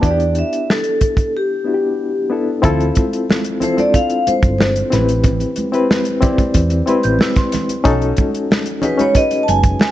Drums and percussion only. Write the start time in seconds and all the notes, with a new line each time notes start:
0.03 kick, closed hi-hat
0.20 closed hi-hat
0.35 closed hi-hat
0.53 closed hi-hat
0.70 snare
0.84 closed hi-hat
1.01 kick, closed hi-hat
1.17 kick, closed hi-hat
2.63 kick, closed hi-hat, muted conga, low conga
2.80 closed hi-hat
2.95 kick, closed hi-hat, high conga
3.13 closed hi-hat
3.30 snare, muted conga, high conga
3.44 closed hi-hat
3.61 closed hi-hat, low conga
3.78 closed hi-hat, high conga
3.94 kick, closed hi-hat, muted conga
4.10 closed hi-hat
4.27 closed hi-hat, high conga
4.42 kick, closed hi-hat
4.58 snare, muted conga, high conga
4.76 closed hi-hat
4.92 snare, closed hi-hat, high conga, low conga
5.08 closed hi-hat
5.24 kick, closed hi-hat, muted conga, low conga
5.40 closed hi-hat, muted conga
5.56 closed hi-hat, high conga
5.73 closed hi-hat
5.91 snare, muted conga, high conga
6.05 closed hi-hat, muted conga
6.22 kick, closed hi-hat, low conga
6.38 kick, closed hi-hat, high conga
6.54 kick, closed hi-hat, muted conga
6.70 closed hi-hat, muted conga
6.87 closed hi-hat, high conga
7.03 closed hi-hat
7.19 snare, high conga
7.36 kick, snare, closed hi-hat, muted conga
7.52 snare, closed hi-hat, high conga, low conga
7.69 closed hi-hat
7.84 kick, closed hi-hat, muted conga, low conga
8.02 closed hi-hat
8.17 kick, closed hi-hat, high conga
8.35 closed hi-hat
8.51 snare, high conga
8.66 closed hi-hat
8.82 closed hi-hat, low conga
8.99 closed hi-hat, high conga
9.15 kick, closed hi-hat, muted conga
9.31 closed hi-hat, muted conga
9.48 closed hi-hat, high conga
9.63 kick, closed hi-hat
9.79 snare, muted conga, high conga